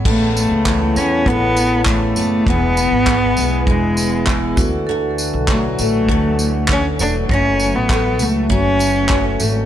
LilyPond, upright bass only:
\new Staff \with { instrumentName = "Upright bass" } { \clef bass \time 4/4 \key a \major \tempo 4 = 100 a,,8. cis,8. e,8 a,,4. fis,,8 | e,,8. gis,,8. b,,8 e,,4. d,8~ | d,8. b,,8. a,,8 d,4. e,,8 | fis,,8. a,,8. cis,8 fis,,4. gis,,8 | }